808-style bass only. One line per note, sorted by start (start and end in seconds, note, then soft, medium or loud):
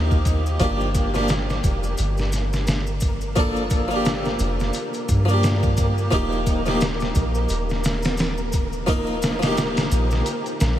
0.00 0.58 D#2 medium
0.60 1.61 G1 loud
1.64 1.95 F1 loud
1.99 4.37 G1 loud
4.40 4.71 F1 medium
5.09 6.09 G2 medium
6.12 7.13 D#1 loud
7.16 7.47 A#1 medium
7.50 9.89 D#1 loud
9.92 10.23 A#1 loud
10.61 10.79 A#1 medium